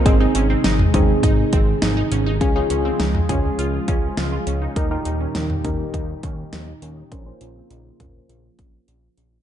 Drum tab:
HH |x-x-x-x-x-x-x-x-|x-x-x-x-x-x-x-x-|x-x-x-x-x-x-x-x-|x-x-x-x-x-x-x-x-|
SD |----o-------o---|----o-------o---|----o-------o---|----------------|
T2 |-----oo---------|-----oo---------|-----oo---------|------o---------|
BD |o-----o-o-o-----|o-----o---o-----|o-----o-o-o-----|o-----o---o-----|